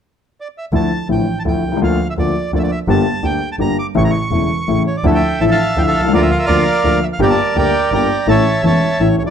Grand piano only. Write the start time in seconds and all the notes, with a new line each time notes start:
0.72 D2 D3 F3 A3 E4
1.09 A1 A2 D3 F3 A3 E4
1.45 D2 D3 F3 A3 E4
1.68 B1
1.72 C2
1.77 C#2
1.82 D2 D3 F3 A#3 F4
2.17 D2 D3 F3 A#3 F4
2.53 D2 D3 F3 A#3 F4
2.88 G1 G2 D3 G3 A#3 G4
3.23 D2 D3 G3 A#3 G4
3.59 G1 G2 D3 G3 A#3 G4
3.95 A1 A2 C#3 E3 A3 E4
4.31 E1 E2 C#3 E3 A3 E4
4.68 A1 A2 C#3 E3 A3 E4
5.04 D2 D3 F3 A3 E4
5.40 A1 A2 D3 F3 A3 E4
5.76 D2 D3 F3 A3 E4
6.00 B1
6.04 C2
6.09 C#2 D3
6.13 D2 F3 A#3 F4
6.49 D2 D3 F3 A#3 F4
6.84 D2 D3 F3 A#3 F4
7.19 G1 G2 D3 G3 A#3 G4
7.55 D2 D3 G3 A#3 G4
7.92 G1 G2 D3 G3 A#3 G4
8.27 A1 A2 E3 A3 C#4 A4
8.64 E1 E2 E3 A3 C#4 A4
9.00 A1 A2 E3 A3 C#4 A4
9.23 B1